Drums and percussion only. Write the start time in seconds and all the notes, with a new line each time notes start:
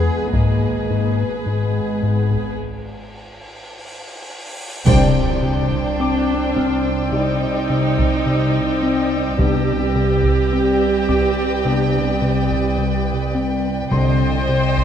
0.33 taiko
2.31 taiko
4.86 taiko, triangle
5.71 taiko
6.56 taiko
7.98 taiko
9.39 taiko
10.24 taiko
11.09 taiko
12.50 taiko
13.92 taiko
14.77 taiko